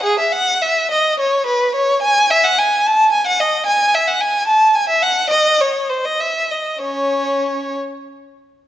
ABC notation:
X:1
M:6/8
L:1/16
Q:3/8=71
K:E
V:1 name="Violin"
G e f2 e2 d2 c2 B2 | [K:C#m] c2 g2 e f g2 a2 g f | d2 g2 e f g2 a2 g e | f2 d2 c2 ^B d e2 d2 |
[Cc]6 z6 |]